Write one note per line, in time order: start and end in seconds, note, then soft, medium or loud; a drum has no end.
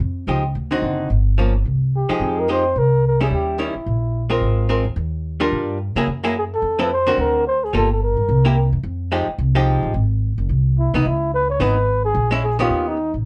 0.00 0.25 F2 medium
0.27 0.53 C#2 medium
0.27 0.42 F3 soft
0.27 0.42 G#3 soft
0.27 0.43 D#4 soft
0.27 0.43 G4 soft
0.55 0.81 D2 medium
0.71 1.08 D3 medium
0.71 1.08 C4 medium
0.71 1.08 D#4 medium
0.71 1.08 F#4 soft
0.82 1.08 F#1 medium
1.10 1.62 G1 medium
1.38 1.52 F3 soft
1.38 1.53 A#3 soft
1.38 1.53 C#4 soft
1.65 2.06 C2 medium
1.96 2.13 G4 medium
2.09 2.46 F3 soft
2.09 2.46 G#3 medium
2.09 2.46 D#4 medium
2.09 2.46 G4 medium
2.09 2.41 G#4 medium
2.09 muted upright bass stroke soft
2.20 2.73 F2 medium
2.39 2.49 A#4 medium
2.48 2.63 F3 soft
2.48 2.63 G#3 soft
2.48 2.63 D#4 soft
2.48 2.64 G4 soft
2.48 2.80 C5 medium
2.76 3.28 C2 medium
2.76 3.05 A#4 medium
3.07 3.21 A#4 medium
3.21 3.57 G3 medium
3.21 3.57 C#4 medium
3.21 3.57 E4 medium
3.21 3.27 G#4 medium
3.31 3.72 D#2 medium
3.31 3.58 G4 medium
3.58 3.73 D#3 soft
3.58 3.73 G3 soft
3.58 3.74 C#4 medium
3.58 3.74 E4 medium
3.58 4.27 E4 medium
3.75 muted upright bass stroke soft
3.86 4.39 A#1 medium
4.30 4.66 G#3 soft
4.30 4.67 C4 medium
4.30 4.67 F4 medium
4.30 4.67 A#4 medium
4.41 4.82 G#1 medium
4.69 4.84 G#3 soft
4.69 4.84 C4 soft
4.69 4.84 F4 soft
4.69 4.84 A#4 medium
4.85 4.96 D#2 medium
4.96 5.49 D#2 medium
5.40 5.77 G3 medium
5.40 5.77 D4 medium
5.40 5.77 F4 medium
5.40 5.78 A#4 medium
5.51 5.93 G2 medium
5.95 6.06 C#3 medium
5.95 6.06 F#3 medium
5.95 6.07 A#3 medium
5.95 6.07 E4 medium
5.95 6.07 G#4 medium
6.07 6.60 F#2 medium
6.24 6.34 F#3 medium
6.24 6.34 A#3 medium
6.24 6.34 E4 medium
6.24 6.34 G#4 medium
6.38 6.45 G#4 medium
6.54 6.83 A4 medium
6.62 7.15 F2 medium
6.79 6.89 F3 medium
6.79 6.89 C4 medium
6.79 6.89 E4 medium
6.79 6.89 A4 medium
6.79 6.92 B4 medium
6.93 7.17 C5 medium
7.07 7.43 D3 medium
7.07 7.43 C4 medium
7.07 7.44 F#4 medium
7.07 7.44 A#4 medium
7.17 7.70 D2 medium
7.17 7.45 A#4 medium
7.47 7.66 C5 medium
7.64 7.74 G#4 medium
7.73 8.14 G1 medium
7.73 7.88 G3 soft
7.73 7.88 A#3 soft
7.73 7.89 F4 soft
7.73 7.89 A4 soft
7.73 7.90 A4 medium
7.92 8.02 A4 medium
8.03 8.70 A#4 medium
8.17 8.27 G2 medium
8.29 8.70 C2 medium
8.45 8.55 A#3 medium
8.45 8.55 E4 medium
8.45 8.56 G4 medium
8.72 8.83 F#2 medium
8.83 9.25 F2 medium
9.12 9.26 F3 medium
9.12 9.27 G#3 medium
9.12 9.27 D#4 soft
9.12 9.27 G4 medium
9.28 muted upright bass stroke soft
9.38 9.80 C2 medium
9.55 9.92 F3 medium
9.55 9.92 G#3 medium
9.55 9.92 D#4 medium
9.55 9.93 G4 medium
9.83 9.93 A1 medium
9.94 10.35 G#1 medium
10.38 10.49 F#1 medium
10.49 10.90 C2 medium
10.79 10.97 E4 medium
10.94 11.04 C2 medium
10.94 11.04 E3 medium
10.94 11.05 B3 medium
10.94 11.08 D#4 medium
10.94 11.05 D#4 medium
11.05 11.58 C#2 medium
11.05 11.33 E4 medium
11.34 11.49 B4 medium
11.50 11.63 C#5 medium
11.60 12.12 G#1 medium
11.60 11.75 E3 medium
11.60 11.75 B3 medium
11.60 11.76 D#4 medium
11.60 12.04 B4 loud
12.05 12.30 G#4 medium
12.14 12.67 A#1 medium
12.31 12.42 G#3 medium
12.31 12.42 C#4 medium
12.31 12.42 E4 medium
12.44 12.59 G#4 medium
12.59 12.96 D#3 medium
12.59 12.96 B3 medium
12.59 12.96 C#4 medium
12.59 12.90 F4 medium
12.59 12.97 G4 medium
12.70 13.11 D#2 medium
12.88 13.15 D#4 medium
13.14 13.25 A1 medium